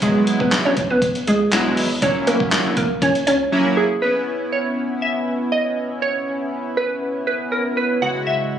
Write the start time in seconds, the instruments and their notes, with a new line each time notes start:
0.02 sub bass C#2, analog polysynth F#3 G#3 B3 E4, synth pluck G#3 G#4, kick, closed hi-hat
0.27 closed hi-hat
0.40 sub bass C#2, synth pluck B3 B4, kick
0.52 snare, clap, closed hi-hat
0.65 synth pluck C#4 C#5
0.77 sub bass B1, kick, closed hi-hat
0.90 synth pluck B3 B4
1.02 kick, closed hi-hat
1.15 closed hi-hat
1.27 sub bass C#2, synth pluck G#3 G#4, closed hi-hat
1.52 sub bass B1, analog polysynth F#3 G#3 B3 E4, snare, clap, closed hi-hat
1.77 sub bass G#1, open hi-hat
2.02 sub bass C#2, analog polysynth F#3 A#3 C#4 E4, synth pluck C#4 C#5, kick, closed hi-hat
2.27 synth pluck A#3 A#4, closed hi-hat
2.40 sub bass C#2, kick
2.52 snare, clap, closed hi-hat
2.77 sub bass A#1, synth pluck A#3 A#4, kick, closed hi-hat
3.02 synth pluck C#4 C#5, kick, closed hi-hat
3.15 closed hi-hat
3.27 sub bass C#2, synth pluck C#4 C#5, closed hi-hat
3.52 analog polysynth F#3 A#3 C#4 E4
3.77 synth pluck G#4
4.02 analog polysynth B3 C#4 E4, synth pluck B4
4.52 synth pluck C#5
5.02 synth pluck E5
5.52 synth pluck D#5
6.02 synth pluck C#5
6.77 synth pluck B4
7.27 synth pluck B4
7.52 synth pluck A#4
7.77 synth pluck B4
8.01 analog polysynth C#3 G#3 E4 F#4, synth pluck F#5
8.27 synth pluck E5